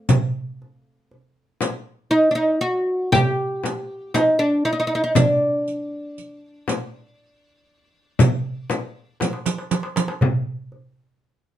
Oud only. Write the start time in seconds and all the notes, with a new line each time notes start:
2.11 D#4
2.31 D4
2.35 D#4
2.61 F#4
3.12 G4
4.14 D#4
4.39 D4
4.65 D#4
4.73 D#4
4.80 D#4
4.87 D#4
4.95 D#4
5.04 D#4
5.16 D4